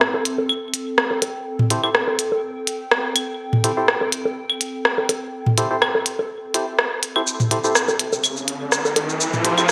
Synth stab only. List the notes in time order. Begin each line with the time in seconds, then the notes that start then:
1.70 E4 G4 A4 C5
1.83 E4 G4 A4 C5
3.64 E4 G4 A4 C5
3.77 E4 G4 A4 C5
5.58 E4 G4 A4 C5
5.71 E4 G4 A4 C5
6.54 E4 G4 A4 C5
7.16 E4 G4 A4 C5
7.51 E4 G4 A4 C5
7.64 E4 G4 A4 C5
9.45 E4 G4 A4 C5
9.58 E4 G4 A4 C5